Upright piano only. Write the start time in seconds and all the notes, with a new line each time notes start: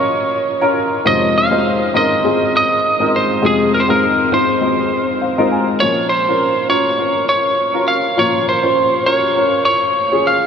Already playing: A#2 F3 C#4 F4 A#4 C#5
0.61 C#4 F4 A#4
1.05 F2 C3 G#3 C4 D#4 F4 C5
1.51 G#3 C4 D#4 F4 C5
1.94 G#3 C4 D#4 F4 A#4
2.24 G#3 C4 D#4 F4 G#4
3.00 G#3 C4 D#4 F4 A#4
3.42 F2 C3 G#3 C4 D#4 F4 G#4
3.88 G#3 C4 D#4 F4 A#4
4.32 G#3 C4 D#4 F4 C5
4.61 G#3 C4 D#4 F4 C5
5.21 F5
5.38 G#3 C4 D#4 F4 A#4
5.51 G#5
5.80 A#2 F3 C#4 F4 A#4
6.27 C#4 F4 A#4
6.69 C#4 F4 A#4
6.98 C#4 F4 A#4
7.73 C#4 F4 A#4
8.17 A#2 F3 C#4 F4 A#4
8.63 C#4 F4 C5
9.06 C#4 F4 A#4
9.36 C#4 F4 A#4
10.12 C#4 F4 G#4